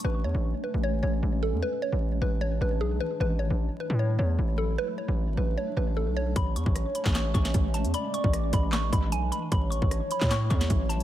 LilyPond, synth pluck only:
\new Staff \with { instrumentName = "Synth pluck" } { \time 4/4 \key a \major \tempo 4 = 152 b'8 cis''4 b'8 cis''8 cis''4 a'8 | b'8 cis''4 b'8 cis''8 b'8 gis'8 b'8 | b'8 cis''4 b'8 cis''8 cis''4 a'8 | b'8 cis''4 b'8 cis''8 b'8 a'8 cis''8 |
b''8 cis'''4 b''8 cis'''8 cis'''4 a''8 | b''8 cis'''4 b''8 cis'''8 b''8 gis''8 b''8 | b''8 cis'''4 b''8 cis'''8 cis'''4 a''8 | }